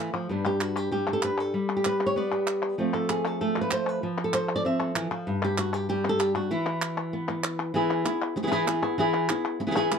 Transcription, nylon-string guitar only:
Already playing: E3 A3 F4 A4
0.14 F3
0.29 G2 G3 B3 D4
0.46 G4
0.62 F#4
0.77 G4
0.91 G3 G4
1.08 D4
1.13 A4
1.25 B4
1.40 A4
1.54 G3
1.77 G4
1.86 B4
2.06 C#5
2.16 B3 D5
2.32 G4
2.78 F3 A3 C4 F4
2.94 A4
3.10 G#4
3.26 A4
3.41 A3 A4
3.57 F4
3.61 B4
3.72 C5
3.89 B4
4.03 F3
4.24 A4
4.34 C5
4.56 D5
4.65 C4 E5
4.80 A4
4.95 E3
5.11 F3
5.27 G2
5.44 G4
5.59 F#4
5.74 G4
5.89 G3 G4
6.05 D4
6.09 A4
6.19 G4
6.35 F#4
6.51 E3 E4
7.13 B3
7.29 B3
7.74 E3 B3 E4 G#4
8.05 B3 E4 G#4
8.36 muted nylon-string guitar stroke
8.43 E3 B3 E4 G#4
8.47 E3 B3 E4 G#4
8.52 E3 B3 E4 G#4
8.66 E3 B3 E4 G#4
8.82 B3 E4 G#4
8.98 E3 B3 E4 G#4
9.29 B3 E4 G#4
9.60 muted nylon-string guitar stroke
9.67 E3 B3 E4 G#4
9.71 E3 B3 E4 G#4
9.76 E3 B3 E4 G#4
9.91 E3 B3 E4 G#4

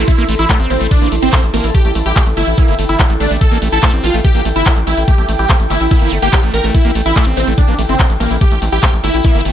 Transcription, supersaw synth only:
0.08 E4
0.39 E4
0.70 C4
0.91 D4
1.22 C4
1.54 A#3
1.75 G4
2.06 G4
2.37 E4
2.58 E4
2.89 E4
3.20 D4
3.41 A4
3.72 A4
4.04 F4
4.25 G4
4.56 E4
4.87 E4
5.08 G4
5.39 G4
5.70 E4
5.91 E4
6.22 G4
6.54 A#4
6.74 E4
7.06 E4
7.37 C4
7.58 D4
7.89 C4
8.20 A#3
8.41 G4
8.72 G4
9.04 E4
9.24 E4

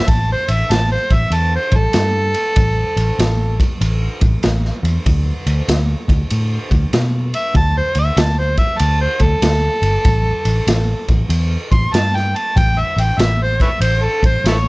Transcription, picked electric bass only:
0.08 A1
0.49 A1
0.70 A1
1.11 A1
1.30 E2
1.72 A1
1.94 G2
2.57 A1
2.96 A1
3.19 A1
3.81 A1
4.21 A1
4.45 A1
4.83 E2
5.06 D2
5.47 D2
5.68 D2
6.08 D2
6.31 A2
6.71 D2
6.93 B2
7.55 D2
7.96 D2
8.17 D2
8.80 D2
9.20 D2
9.42 D2
9.82 G1
10.05 A1
10.45 A1
10.67 A1
11.08 A1
11.29 E2
11.72 A1
11.94 G2
12.56 A1
12.97 A1
13.18 A1
13.80 A1
14.23 A1
14.44 A1

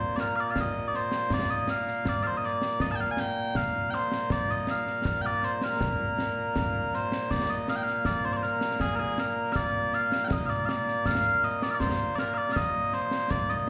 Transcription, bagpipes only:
Already playing: A#2 A#3 C5
0.16 A#4 D5
0.36 D5 F5
0.51 F5
0.60 D#5
0.88 D5
0.96 C5
1.34 D5
1.51 D#5
1.70 F5
2.09 D5
2.23 C5 F5
2.37 D#5
2.46 D5
2.82 D#5
2.91 A5
2.95 G5
3.01 F5
3.11 G#5
3.20 G5
3.56 F5
3.90 C5 G5
4.33 D5
4.51 D#5
4.70 F5
5.22 G5
5.26 D5
5.45 C5
5.55 C5
5.64 A#4
6.95 C5
7.31 D5
7.50 D#5
7.69 F5
7.76 G5
7.83 F5
8.06 D5
8.25 C5
8.33 C5 D5
8.43 A#4
8.80 G#4
8.95 G#4 A#4
9.19 A#4
9.52 D5 F5
9.94 F5
10.24 F5 G5
10.32 D#5
10.46 D5 F5
10.65 D5 F5
11.06 F5
11.44 D#5
11.63 D5
11.71 D5 F5
11.80 C5
12.16 A#4 D5
12.34 D5 F5
12.52 D#5 F5
12.94 C5
13.31 D5
13.50 D#5

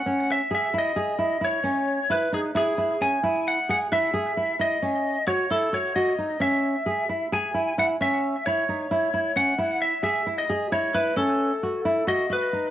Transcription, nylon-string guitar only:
0.06 C#4
0.51 G#4
0.74 E4
0.96 G#4
1.19 E4
1.41 E4
1.64 C#4
2.10 E4
2.32 D#4
2.55 E4
2.78 E4
3.01 C#4
3.23 E4
3.69 G#4
3.92 E4
4.14 G#4
4.37 E4
4.59 E4
4.82 C#4
5.27 F#4
5.51 E4
5.73 F#4
5.96 F#4
6.18 D#4
6.40 C#4
6.86 G#4
7.09 E4
7.32 G#4
7.54 E4
7.78 E4
8.01 C#4
8.47 E4
8.69 D#4
8.91 E4
9.14 E4
9.36 C#4
9.58 E4
10.03 G#4
10.26 E4
10.50 G#4
10.72 E4
10.94 E4
11.16 C#4
11.63 F#4
11.85 E4
12.07 F#4
12.30 F#4
12.53 D#4

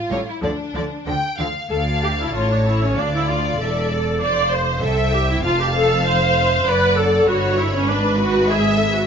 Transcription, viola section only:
0.10 G3 A4
0.42 F3 A4
0.74 F3 A4
1.07 F3 A4
1.39 F3 A4
1.70 A4
2.03 G4
2.21 E4
2.35 F4
2.51 D4
2.66 E4
2.83 C#4
2.98 D4
3.15 E4
3.29 F4
3.60 A4
4.21 D5
4.52 C5
4.83 A4
5.14 G4
5.31 E4
5.44 F4
5.60 G4
5.74 A4
6.05 C5
6.67 B4
6.97 A4
7.27 F#4
7.58 E4
7.75 C#4
7.89 D4
8.20 F#4
8.50 G#4
8.76 A4
8.85 G#4
8.94 F#4
9.03 G#4

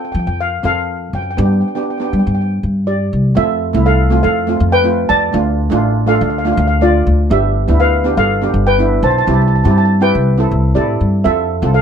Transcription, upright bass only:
0.15 F3
0.27 F2
0.64 F2
1.13 F#2
1.38 G2
2.13 G3
2.27 G2
2.63 G2
3.13 C2
3.37 F2
3.74 C2
4.24 F2
4.60 F2
5.10 F2
5.34 D2
5.72 A1
6.21 D2
6.57 D2
7.07 D2
7.31 G1
7.68 D2
8.17 G1
8.54 G1
9.03 B1
9.28 C2
9.65 G2
10.15 C2
10.51 C2
10.76 A2
11.01 G2
11.25 F2
11.62 C2

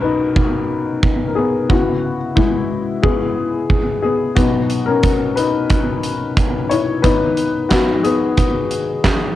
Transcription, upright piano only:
Already playing: B2 F#3 B3 C#4 D#4 F#4 A#4
0.01 D#4 B4
1.28 A#4
1.35 B3 G#4
1.69 C#3 B3 E4 F#4
2.35 G#3 E4
3.02 B3 G#4
4.03 B3 G#4
4.36 B2 F#3 B3 D#4 F#4
4.86 C#4 A#4
5.36 D#4 B4
6.69 E4 C#5
7.02 G#2 D#3 B3 D#4 B4
7.69 B3 F#4
8.03 B3 G#4

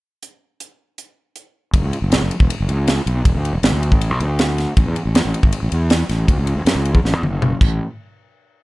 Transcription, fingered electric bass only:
1.74 F#1
1.83 C#2
2.02 F#1
2.12 C#2
2.22 F#1
2.40 E1
2.60 F#1
2.69 C#2
3.06 B1
3.25 E1
3.35 D2
3.53 E1
3.63 G#1
3.72 D2
3.92 A1
4.10 B1
4.20 D2
4.77 A1
4.86 E2
5.05 A1
5.15 E2
5.25 A1
5.43 G#1
5.63 A1
5.72 E2
6.09 A1
6.28 D2
6.38 C#2
6.56 D2
6.65 F#2
6.75 C#2
6.95 E2
7.04 A1
7.13 E2
7.23 F#1
7.61 A1

